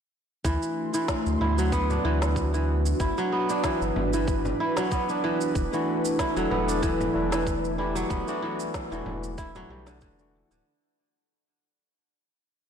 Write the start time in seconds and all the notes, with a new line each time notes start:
0.44 D2 E3 A3 D4 F#4 C6, kick, shaker
0.63 shaker
0.94 E3, shaker
1.08 kick, snare, shaker
1.26 D2, shaker
1.41 D2 E4, frame drum
1.58 F#3, shaker
1.72 B3, kick, shaker
1.90 D4, frame drum, shaker
2.05 D2 E3
2.22 snare, shaker
2.36 kick, shaker
2.54 E3, shaker
2.86 shaker
2.99 G1 E4 B4, kick, shaker
3.18 F#3, shaker
3.32 B3
3.49 D4, shaker
3.64 E3, kick, snare, shaker
3.81 G1, shaker
3.96 G1, frame drum
4.13 E3, shaker
4.28 kick, shaker
4.45 frame drum, shaker
4.60 E4
4.77 F#3, snare, shaker
4.92 B3, kick, shaker
5.09 D4, shaker
5.24 E3
5.41 shaker
5.55 E1 E4, kick, shaker
5.72 E3 A3 D4 F#4, shaker
6.05 shaker
6.19 E4, kick, snare, shaker
6.35 E1 E3 F#3 A3 D4 A4, shaker
6.51 E1 B3, frame drum
6.68 D4, shaker
6.82 E3, kick, shaker
7.01 frame drum, shaker
7.13 E1 E3 A3 D4 E4
7.32 E3, snare, shaker
7.47 kick, shaker
7.64 shaker
7.78 E3 A3 D4 E4 G4
7.95 F#3, shaker
8.10 E1 B3, kick, shaker
8.27 E3 A3 D4 F#4, shaker
8.42 E3
8.60 shaker
8.74 kick, snare, shaker
8.91 E1 E3 A3 D4 F#4, shaker
9.06 E1, frame drum
9.24 shaker
9.38 E4, kick, shaker
9.55 E3 F#3 A3 D4 F#4, frame drum, shaker
9.69 B1 E3 G3 A3 D4 F#4
9.87 D3, snare, shaker
10.01 E1, kick, shaker
10.19 E3 A3 D4 F#4, shaker
10.51 D1 D3, shaker